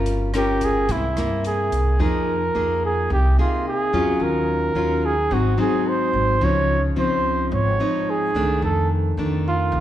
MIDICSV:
0, 0, Header, 1, 5, 480
1, 0, Start_track
1, 0, Key_signature, -4, "minor"
1, 0, Tempo, 551978
1, 1736, Time_signature, 4, 2, 24, 8
1, 8524, End_track
2, 0, Start_track
2, 0, Title_t, "Flugelhorn"
2, 0, Program_c, 0, 56
2, 324, Note_on_c, 0, 67, 95
2, 562, Note_on_c, 0, 68, 96
2, 575, Note_off_c, 0, 67, 0
2, 795, Note_on_c, 0, 64, 83
2, 808, Note_off_c, 0, 68, 0
2, 1266, Note_off_c, 0, 64, 0
2, 1277, Note_on_c, 0, 68, 81
2, 1757, Note_on_c, 0, 70, 90
2, 1770, Note_off_c, 0, 68, 0
2, 2466, Note_off_c, 0, 70, 0
2, 2481, Note_on_c, 0, 68, 81
2, 2692, Note_off_c, 0, 68, 0
2, 2722, Note_on_c, 0, 67, 85
2, 2933, Note_off_c, 0, 67, 0
2, 2958, Note_on_c, 0, 65, 81
2, 3171, Note_off_c, 0, 65, 0
2, 3202, Note_on_c, 0, 68, 86
2, 3677, Note_on_c, 0, 70, 91
2, 3690, Note_off_c, 0, 68, 0
2, 4397, Note_on_c, 0, 68, 92
2, 4410, Note_off_c, 0, 70, 0
2, 4638, Note_on_c, 0, 66, 86
2, 4651, Note_off_c, 0, 68, 0
2, 4867, Note_off_c, 0, 66, 0
2, 4876, Note_on_c, 0, 68, 89
2, 5111, Note_on_c, 0, 72, 103
2, 5124, Note_off_c, 0, 68, 0
2, 5603, Note_on_c, 0, 73, 101
2, 5616, Note_off_c, 0, 72, 0
2, 5937, Note_off_c, 0, 73, 0
2, 6077, Note_on_c, 0, 72, 94
2, 6514, Note_off_c, 0, 72, 0
2, 6556, Note_on_c, 0, 73, 97
2, 7045, Note_on_c, 0, 68, 90
2, 7058, Note_off_c, 0, 73, 0
2, 7511, Note_off_c, 0, 68, 0
2, 7520, Note_on_c, 0, 69, 82
2, 7732, Note_off_c, 0, 69, 0
2, 8243, Note_on_c, 0, 65, 87
2, 8524, Note_off_c, 0, 65, 0
2, 8524, End_track
3, 0, Start_track
3, 0, Title_t, "Nylon-string guitar"
3, 0, Program_c, 1, 24
3, 0, Note_on_c, 1, 55, 53
3, 0, Note_on_c, 1, 61, 51
3, 0, Note_on_c, 1, 65, 58
3, 0, Note_on_c, 1, 70, 60
3, 261, Note_off_c, 1, 61, 0
3, 262, Note_off_c, 1, 65, 0
3, 263, Note_off_c, 1, 70, 0
3, 301, Note_on_c, 1, 61, 58
3, 308, Note_on_c, 1, 65, 54
3, 313, Note_on_c, 1, 70, 61
3, 755, Note_off_c, 1, 55, 0
3, 760, Note_off_c, 1, 61, 0
3, 763, Note_off_c, 1, 65, 0
3, 765, Note_off_c, 1, 70, 0
3, 784, Note_on_c, 1, 48, 54
3, 787, Note_on_c, 1, 56, 54
3, 788, Note_on_c, 1, 58, 47
3, 792, Note_on_c, 1, 64, 55
3, 921, Note_off_c, 1, 56, 0
3, 923, Note_off_c, 1, 58, 0
3, 924, Note_off_c, 1, 64, 0
3, 1026, Note_on_c, 1, 58, 59
3, 1030, Note_on_c, 1, 64, 61
3, 1702, Note_off_c, 1, 58, 0
3, 1704, Note_off_c, 1, 64, 0
3, 1717, Note_off_c, 1, 48, 0
3, 1732, Note_on_c, 1, 53, 54
3, 1737, Note_on_c, 1, 63, 54
3, 1738, Note_on_c, 1, 58, 51
3, 1743, Note_on_c, 1, 68, 61
3, 2045, Note_off_c, 1, 58, 0
3, 2046, Note_off_c, 1, 63, 0
3, 2049, Note_off_c, 1, 68, 0
3, 2216, Note_on_c, 1, 58, 56
3, 2220, Note_on_c, 1, 63, 49
3, 2225, Note_on_c, 1, 68, 62
3, 2670, Note_off_c, 1, 53, 0
3, 2693, Note_off_c, 1, 58, 0
3, 2695, Note_off_c, 1, 63, 0
3, 2697, Note_off_c, 1, 68, 0
3, 2699, Note_on_c, 1, 48, 54
3, 2943, Note_on_c, 1, 58, 57
3, 2947, Note_on_c, 1, 63, 57
3, 2951, Note_on_c, 1, 68, 62
3, 3381, Note_off_c, 1, 58, 0
3, 3383, Note_off_c, 1, 63, 0
3, 3384, Note_off_c, 1, 68, 0
3, 3419, Note_on_c, 1, 54, 63
3, 3425, Note_on_c, 1, 65, 72
3, 3426, Note_on_c, 1, 61, 62
3, 3633, Note_off_c, 1, 48, 0
3, 3659, Note_on_c, 1, 51, 56
3, 4099, Note_off_c, 1, 54, 0
3, 4101, Note_off_c, 1, 61, 0
3, 4102, Note_off_c, 1, 65, 0
3, 4133, Note_on_c, 1, 54, 55
3, 4137, Note_on_c, 1, 61, 55
3, 4143, Note_on_c, 1, 65, 59
3, 4457, Note_off_c, 1, 54, 0
3, 4457, Note_off_c, 1, 61, 0
3, 4462, Note_off_c, 1, 65, 0
3, 4593, Note_off_c, 1, 51, 0
3, 4613, Note_on_c, 1, 44, 54
3, 4618, Note_on_c, 1, 54, 51
3, 4620, Note_on_c, 1, 60, 57
3, 4625, Note_on_c, 1, 63, 59
3, 4817, Note_off_c, 1, 60, 0
3, 4818, Note_off_c, 1, 54, 0
3, 4822, Note_off_c, 1, 63, 0
3, 4849, Note_on_c, 1, 54, 60
3, 4853, Note_on_c, 1, 60, 63
3, 4859, Note_on_c, 1, 63, 69
3, 5534, Note_off_c, 1, 54, 0
3, 5535, Note_off_c, 1, 60, 0
3, 5539, Note_off_c, 1, 63, 0
3, 5551, Note_off_c, 1, 44, 0
3, 5576, Note_on_c, 1, 53, 58
3, 5580, Note_on_c, 1, 49, 57
3, 5585, Note_on_c, 1, 63, 60
3, 5885, Note_off_c, 1, 53, 0
3, 5889, Note_off_c, 1, 63, 0
3, 6055, Note_on_c, 1, 53, 54
3, 6059, Note_on_c, 1, 60, 54
3, 6063, Note_on_c, 1, 63, 62
3, 6514, Note_off_c, 1, 49, 0
3, 6533, Note_on_c, 1, 44, 55
3, 6737, Note_off_c, 1, 53, 0
3, 6738, Note_off_c, 1, 60, 0
3, 6741, Note_off_c, 1, 63, 0
3, 6780, Note_on_c, 1, 53, 60
3, 6785, Note_on_c, 1, 60, 62
3, 6789, Note_on_c, 1, 63, 71
3, 7220, Note_off_c, 1, 53, 0
3, 7222, Note_off_c, 1, 60, 0
3, 7224, Note_off_c, 1, 63, 0
3, 7260, Note_on_c, 1, 51, 65
3, 7266, Note_on_c, 1, 57, 66
3, 7269, Note_on_c, 1, 62, 69
3, 7470, Note_off_c, 1, 44, 0
3, 7503, Note_on_c, 1, 41, 54
3, 7940, Note_off_c, 1, 51, 0
3, 7941, Note_off_c, 1, 57, 0
3, 7944, Note_off_c, 1, 62, 0
3, 7984, Note_on_c, 1, 51, 53
3, 7988, Note_on_c, 1, 57, 57
3, 7994, Note_on_c, 1, 62, 59
3, 8435, Note_off_c, 1, 41, 0
3, 8463, Note_on_c, 1, 48, 56
3, 8524, Note_off_c, 1, 48, 0
3, 8524, Note_off_c, 1, 51, 0
3, 8524, Note_off_c, 1, 57, 0
3, 8524, Note_off_c, 1, 62, 0
3, 8524, End_track
4, 0, Start_track
4, 0, Title_t, "Upright bass"
4, 0, Program_c, 2, 32
4, 0, Note_on_c, 2, 31, 86
4, 741, Note_off_c, 2, 31, 0
4, 775, Note_on_c, 2, 36, 86
4, 1014, Note_on_c, 2, 43, 72
4, 1027, Note_off_c, 2, 36, 0
4, 1462, Note_off_c, 2, 43, 0
4, 1498, Note_on_c, 2, 36, 72
4, 1720, Note_off_c, 2, 36, 0
4, 1735, Note_on_c, 2, 41, 94
4, 2182, Note_off_c, 2, 41, 0
4, 2217, Note_on_c, 2, 41, 79
4, 2663, Note_off_c, 2, 41, 0
4, 2697, Note_on_c, 2, 36, 98
4, 2920, Note_off_c, 2, 36, 0
4, 3416, Note_on_c, 2, 41, 84
4, 3639, Note_off_c, 2, 41, 0
4, 3649, Note_on_c, 2, 39, 89
4, 4099, Note_off_c, 2, 39, 0
4, 4132, Note_on_c, 2, 39, 81
4, 4580, Note_off_c, 2, 39, 0
4, 4616, Note_on_c, 2, 32, 101
4, 4839, Note_off_c, 2, 32, 0
4, 5334, Note_on_c, 2, 32, 88
4, 5558, Note_off_c, 2, 32, 0
4, 5575, Note_on_c, 2, 37, 101
4, 6022, Note_off_c, 2, 37, 0
4, 6057, Note_on_c, 2, 37, 84
4, 6503, Note_off_c, 2, 37, 0
4, 6537, Note_on_c, 2, 32, 101
4, 6760, Note_off_c, 2, 32, 0
4, 7255, Note_on_c, 2, 37, 85
4, 7479, Note_off_c, 2, 37, 0
4, 7497, Note_on_c, 2, 41, 92
4, 7943, Note_off_c, 2, 41, 0
4, 7977, Note_on_c, 2, 41, 87
4, 8423, Note_off_c, 2, 41, 0
4, 8451, Note_on_c, 2, 36, 100
4, 8524, Note_off_c, 2, 36, 0
4, 8524, End_track
5, 0, Start_track
5, 0, Title_t, "Drums"
5, 52, Note_on_c, 9, 42, 44
5, 139, Note_off_c, 9, 42, 0
5, 293, Note_on_c, 9, 37, 58
5, 293, Note_on_c, 9, 42, 43
5, 380, Note_off_c, 9, 37, 0
5, 380, Note_off_c, 9, 42, 0
5, 532, Note_on_c, 9, 42, 43
5, 535, Note_on_c, 9, 36, 24
5, 619, Note_off_c, 9, 42, 0
5, 622, Note_off_c, 9, 36, 0
5, 772, Note_on_c, 9, 42, 54
5, 776, Note_on_c, 9, 36, 55
5, 859, Note_off_c, 9, 42, 0
5, 863, Note_off_c, 9, 36, 0
5, 1016, Note_on_c, 9, 37, 58
5, 1016, Note_on_c, 9, 42, 42
5, 1102, Note_off_c, 9, 37, 0
5, 1102, Note_off_c, 9, 42, 0
5, 1256, Note_on_c, 9, 42, 41
5, 1343, Note_off_c, 9, 42, 0
5, 1497, Note_on_c, 9, 36, 22
5, 1498, Note_on_c, 9, 42, 44
5, 1584, Note_off_c, 9, 36, 0
5, 1585, Note_off_c, 9, 42, 0
5, 8524, End_track
0, 0, End_of_file